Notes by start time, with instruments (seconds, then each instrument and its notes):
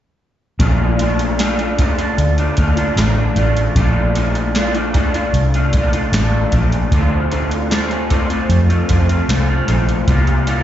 0.59 fingered electric bass A#1, clean electric guitar A#2 A3 D4 F4, kick, closed hi-hat
0.99 clean electric guitar A#2 A3 D4 F4, closed hi-hat
1.19 closed hi-hat
1.38 clean electric guitar A#2 A3 D4 F4, snare, closed hi-hat
1.58 clean electric guitar A3 D4 F4, closed hi-hat
1.78 clean electric guitar A#2 A3 D4 F4, kick, closed hi-hat
1.98 clean electric guitar A3 D4 F4, closed hi-hat
2.18 fingered electric bass D2, closed hi-hat
2.38 clean electric guitar A3 D4 F4, closed hi-hat
2.57 fingered electric bass D2, clean electric guitar A#2 A3 D4 F4, kick, closed hi-hat
2.76 clean electric guitar A3 D4 F4, closed hi-hat
2.96 fingered electric bass A1, clean electric guitar A#2 A3 D4 F4, snare, closed hi-hat
3.17 clean electric guitar A3 D4 F4
3.36 fingered electric bass A1, clean electric guitar A3 D4 F4, snare, closed hi-hat
3.57 closed hi-hat
3.76 fingered electric bass A#1, clean electric guitar A#2 A3 D4 F4, kick, closed hi-hat
4.15 clean electric guitar A#2 A3 D4 F4, closed hi-hat
4.35 closed hi-hat
4.54 clean electric guitar A#2 A3 D4 F4, snare, closed hi-hat
4.75 clean electric guitar A3 D4 F4, closed hi-hat
4.94 clean electric guitar A#2 A3 D4 F4, kick, closed hi-hat
5.14 clean electric guitar A3 D4 F4, closed hi-hat
5.34 fingered electric bass C2, closed hi-hat
5.54 clean electric guitar A3 D4 F4, closed hi-hat
5.73 fingered electric bass A#1, clean electric guitar A#2 A3 D4 F4, kick, closed hi-hat
5.93 clean electric guitar A3 D4 F4, closed hi-hat
6.12 fingered electric bass A1, clean electric guitar A3 D4 F4, snare, closed hi-hat
6.52 fingered electric bass A#1, clean electric guitar A#2 A3 D4 F4, kick, snare, closed hi-hat
6.72 closed hi-hat
6.92 fingered electric bass D2, clean electric guitar D3 A3 C4 F4, kick, closed hi-hat
7.30 clean electric guitar D3 A3 C4 F4, closed hi-hat
7.51 closed hi-hat
7.70 clean electric guitar D3 A3 C4 F4, snare, closed hi-hat
7.90 clean electric guitar A3 C4 F4, closed hi-hat
8.09 clean electric guitar D3 A3 C4 F4, kick, closed hi-hat
8.29 clean electric guitar A3 C4 F4, closed hi-hat
8.49 fingered electric bass F2, closed hi-hat
8.68 clean electric guitar A3 C4 F4, closed hi-hat
8.88 fingered electric bass F2, clean electric guitar D3 A3 C4 F4, kick, closed hi-hat
9.09 clean electric guitar A3 C4 F4, closed hi-hat
9.28 fingered electric bass C2, clean electric guitar D3 A3 C4 F4, snare, closed hi-hat
9.48 clean electric guitar A3 C4 F4
9.67 fingered electric bass A#1, clean electric guitar D3 A3 C4 F4, snare, closed hi-hat
9.89 closed hi-hat
10.07 fingered electric bass C2, clean electric guitar C3 G3 A#3 F4, kick, closed hi-hat
10.27 closed hi-hat
10.47 clean electric guitar C3 G3 A#3 F4, closed hi-hat